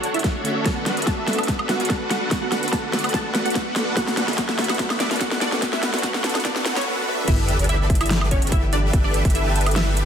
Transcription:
Already playing: D3 A3 B3 C#4 D4 F#4 A4 C#5 F#5
0.04 closed hi-hat
0.14 E4 E5, closed hi-hat
0.19 closed hi-hat
0.24 kick, snare, closed hi-hat
0.44 D3 A3 C#4 D4 F#4 A4 C#5 E5, closed hi-hat
0.64 D3 A3 B3 D4 F#4 A4 B4 F#5 A5, kick, snare, closed hi-hat, riser
0.86 snare, closed hi-hat
0.97 D4 F#4 A4 B4 E5, closed hi-hat
1.02 closed hi-hat
1.07 A4 A5, kick, snare, closed hi-hat
1.27 D3 A3 B3 A4, snare, closed hi-hat
1.33 closed hi-hat
1.38 A4 A5, closed hi-hat, high woodblock
1.43 closed hi-hat
1.48 kick, snare, closed hi-hat
1.59 high woodblock
1.67 D3 A3 B3 F#4 F#5, snare, closed hi-hat
1.71 F#4
1.80 D4 F#4 A4 B4 F#5, closed hi-hat
1.85 closed hi-hat
1.90 A4 A5, kick, snare, closed hi-hat
2.10 F#4 F#5, snare, closed hi-hat
2.29 D3 A3 B3 D4 F#4 A4 F#5, kick, snare, closed hi-hat
2.33 F#4
2.42 F#4 F#5
2.52 snare, closed hi-hat
2.63 D4 F#4 A4 B4 F#5, closed hi-hat
2.68 closed hi-hat
2.72 A4 A5, kick, snare, closed hi-hat
2.92 D3 A3 B3 A4, snare, closed hi-hat
2.99 closed hi-hat
3.04 closed hi-hat, high woodblock
3.09 closed hi-hat
3.14 A4 A5, kick, snare, closed hi-hat
3.33 D3 A3 B3 F#4, snare, closed hi-hat
3.46 F#4 F#5, closed hi-hat
3.50 closed hi-hat
3.55 kick, snare, closed hi-hat
3.76 snare, closed hi-hat
3.94 D3 A3 B3 E4 F#4 F#5, kick, snare, closed hi-hat
3.98 F#4
4.08 snare
4.17 snare, closed hi-hat
4.28 D4 F#4 A4 B4 E5, snare, closed hi-hat
4.33 closed hi-hat
4.38 F#4 F#5, kick, snare, closed hi-hat
4.49 snare
4.57 D3 A3 B3 A4, snare, closed hi-hat
4.64 closed hi-hat
4.69 F#4 F#5, snare, closed hi-hat, high woodblock
4.74 closed hi-hat
4.79 kick, snare, closed hi-hat
4.90 snare, high woodblock
4.98 D3 A3 B3 D4 F#4 D5, snare, closed hi-hat
5.11 D4 F#4 A4 B4 F#5, snare, closed hi-hat
5.16 closed hi-hat
5.20 F#4 F#5, kick, snare, closed hi-hat
5.32 snare
5.41 D4 D5, snare, closed hi-hat
5.52 snare
5.60 D3 A3 B3 D4 F#4 A4 B4 F#5, kick, snare, closed hi-hat
5.64 F#4
5.73 E4 E5, snare
5.83 snare, closed hi-hat
5.94 D4 F#4 A4 B4 F#5, snare, closed hi-hat
5.99 closed hi-hat
6.03 F#4 F#5, kick, snare, closed hi-hat
6.14 snare
6.23 D3 A3 B3 A4, snare, closed hi-hat
6.29 closed hi-hat
6.35 snare, closed hi-hat, high woodblock
6.40 closed hi-hat
6.45 D4 D5, kick, snare, closed hi-hat
6.56 snare
6.66 snare, closed hi-hat
6.76 C#4 C#5, snare, closed hi-hat
6.81 closed hi-hat
7.07 D4 F#4 A4 B4 E5
7.27 G1 E3 A3 B3 E4 G4 A4 B4 E5, kick, closed hi-hat, crash, sub drop
7.49 closed hi-hat
7.59 G1 D4 G4 A4 B4 D5, closed hi-hat
7.64 closed hi-hat
7.69 E4 E5, closed hi-hat
7.90 kick, closed hi-hat
7.95 closed hi-hat
8.01 E4 E5, closed hi-hat, high woodblock
8.06 closed hi-hat
8.11 snare, closed hi-hat
8.21 high woodblock
8.31 C#4 C#5, kick, closed hi-hat
8.42 G1 D4 G4 A4 B4 E5, closed hi-hat
8.47 closed hi-hat
8.52 E4 E5, kick, closed hi-hat
8.73 D4 D5, closed hi-hat
8.93 G1 D4 G4 A4 B4 E5, kick, closed hi-hat
9.04 D4 D5
9.14 closed hi-hat
9.25 G1 D4 G4 A4 B4 E5, kick, closed hi-hat
9.30 closed hi-hat
9.35 E4 E5, closed hi-hat
9.56 closed hi-hat
9.61 closed hi-hat
9.66 closed hi-hat, high woodblock
9.71 closed hi-hat
9.76 E4 E5, snare, closed hi-hat
9.97 closed hi-hat

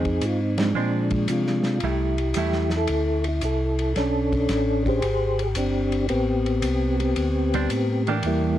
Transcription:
Already playing: F2 C4 D#4 G#4
0.05 kick, ride
0.21 G#2 F4, hi-hat pedal, ride
0.58 F3 G#3 D4, snare, ride
0.75 A#2 G#3 C4 D4
1.11 kick, ride
1.28 C3 G#3 D4 F4, hi-hat pedal, ride
1.47 snare
1.63 snare, ride
1.80 C2 G3, ride
1.84 A3 E4 G4
2.18 ride
2.34 E2 G3 A3, hi-hat pedal, ride
2.38 E4
2.53 snare
2.70 snare, ride
2.77 E4 A4
2.87 D2, ride
3.24 ride
3.28 E4
3.41 C2 E4 A4, hi-hat pedal, ride
3.79 ride
3.96 B1 C#4 D4 A4, snare, ride
4.33 kick, ride
4.49 A1, snare, hi-hat pedal, ride
4.86 G4 G#4 C5, kick, ride
5.02 G#1, ride
5.39 G#4, ride
5.55 G1 C4 D4 G4, hi-hat pedal, ride
5.92 ride
6.09 A1 B3 C4 G4, ride
6.46 ride
6.62 C2, hi-hat pedal, ride
7.00 B3 C4 G4, ride
7.16 D2, ride
7.54 G3 C4 D4, ride
7.70 A2, hi-hat pedal, ride
8.07 E3 A#3 D4 G4, ride
8.23 E2 E4, ride
8.27 G3 A#3

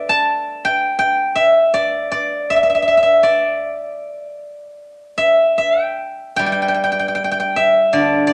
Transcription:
Already playing: A4 B4 D5 E5
0.09 A5
0.65 G5
0.99 G5
1.35 E5
1.74 D5
2.12 D5
2.50 E5
2.56 E5
2.63 E5
2.70 E5
2.75 E5
2.82 E5
2.88 E5
2.97 E5
3.03 E5
3.23 D5
5.18 E5
5.58 E5
5.83 G5
6.36 G3 G5
6.46 G5
6.52 G5
6.62 G5
6.68 G5
6.74 G5
6.84 G5
6.92 G5
6.99 G5
7.08 G5
7.15 G5
7.24 G5
7.31 G5
7.40 G5
7.56 E5
7.93 D3 D5
8.27 D5

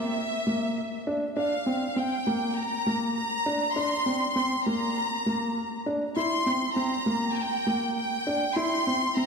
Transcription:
Already playing: A#3 E5
0.47 A#3
1.07 D4
1.36 D4 F5
1.66 C4
1.96 C4 G5
2.27 A#3
2.56 A#5
2.87 A#3
3.15 A#5
3.46 D4
3.75 D4 C6
4.06 C4
4.35 C4 C6
4.65 A#3 A#5
5.26 A#3
5.86 D4
6.17 E4 C6
6.46 C4
6.76 C4 A#5
7.06 A#3
7.37 G5
7.67 A#3
7.96 G5
8.27 D4
8.55 E4 C6
8.87 C4
9.15 C4 A#5

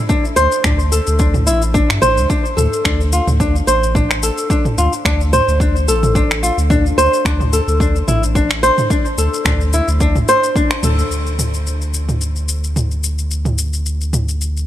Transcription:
0.09 D4, kick, shaker
0.25 shaker
0.36 D2 C5, shaker
0.52 shaker
0.64 D2 D4, finger snap, kick, mid tom, shaker
0.79 shaker
0.92 A4, shaker
1.07 D2, shaker
1.19 D4, kick, shaker
1.34 mid tom, shaker
1.47 A1 E4, shaker
1.62 shaker
1.74 D4, kick, shaker
1.90 G2, finger snap, shaker
2.02 A1 C5, mid tom, shaker
2.17 D2, shaker
2.30 D4, kick, shaker
2.45 shaker
2.57 D2 A4, mid tom, shaker
2.73 shaker
2.85 D2 D4, finger snap, kick, shaker
3.01 shaker
3.13 F4, shaker
3.27 D2, mid tom, shaker
3.40 D4, kick, shaker
3.56 shaker
3.67 A1 C5, shaker
3.83 shaker
3.95 D4, kick, mid tom, shaker
4.11 finger snap, shaker
4.23 A4, shaker
4.38 shaker
4.50 D4, kick, shaker
4.65 mid tom, shaker
4.78 D2 F4, shaker
4.93 shaker
5.05 D2 D4, finger snap, kick, shaker
5.21 shaker
5.33 C5, mid tom, shaker
5.48 D2, shaker
5.60 D4, kick, shaker
5.76 shaker
5.88 A1 A4, shaker
6.03 mid tom, shaker
6.15 D4, kick, shaker
6.31 finger snap, shaker
6.43 F4, shaker
6.58 D2, shaker
6.70 D4, kick, mid tom, shaker
6.86 shaker
6.97 D2 C5, shaker
7.13 shaker
7.25 D2 D4, finger snap, kick, shaker
7.41 mid tom, shaker
7.53 A4, shaker
7.67 D2, shaker
7.80 D4, kick, shaker
7.96 shaker
8.08 A1 E4, mid tom, shaker
8.23 shaker
8.35 D4, kick, shaker
8.51 finger snap, shaker
8.63 C5, shaker
8.78 mid tom, shaker
8.90 D4, kick, shaker
9.05 shaker
9.18 D2 A4, shaker
9.34 shaker
9.45 D2 D4, finger snap, kick, mid tom, shaker
9.61 shaker
9.73 E4, shaker
9.88 D2, shaker
10.00 D4, kick, shaker
10.16 mid tom, shaker
10.28 C5, shaker
10.44 shaker
10.56 D4, kick, shaker
10.71 finger snap, shaker
10.83 D2 A4, mid tom, shaker
10.99 shaker
11.10 D2, shaker
11.27 shaker
11.39 mid tom, shaker
11.54 shaker
11.67 shaker
11.82 shaker
11.94 shaker
12.09 mid tom, shaker
12.21 shaker
12.36 shaker
12.49 shaker
12.64 shaker
12.76 mid tom, shaker
12.91 shaker
13.04 shaker
13.19 shaker
13.31 shaker
13.45 mid tom, shaker
13.58 shaker
13.73 shaker
13.86 shaker
14.01 shaker
14.13 mid tom, shaker
14.29 shaker
14.41 shaker
14.57 shaker

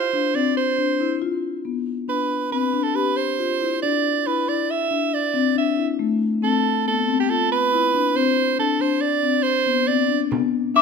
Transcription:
Already playing: C5
0.13 D4
0.35 C4 D5
0.57 C5
0.78 D4
1.00 E4
1.22 F4
1.65 B3
2.08 D4 B4
2.52 C4 B4
2.73 D4
2.83 A4
2.94 G4 B4
3.16 C5
3.39 F4
3.61 E4
3.82 D4 D5
4.26 E4 B4
4.48 E4 D5
4.70 E5
4.91 D4
5.14 D5
5.34 C4
5.56 D4 E5
5.77 E4
5.99 A3
6.42 C4 A4
6.86 B3 A4
7.08 C4
7.20 G4
7.29 F4 A4
7.52 B4
7.73 E4
7.94 D4
8.15 C4 C5
8.59 D4 A4
8.80 D4 C5
9.01 D5
9.23 C4
9.43 C5
9.67 B3
9.87 C4 D5
10.09 D4
10.31 B3, frame drum
10.74 D4 E5 D6

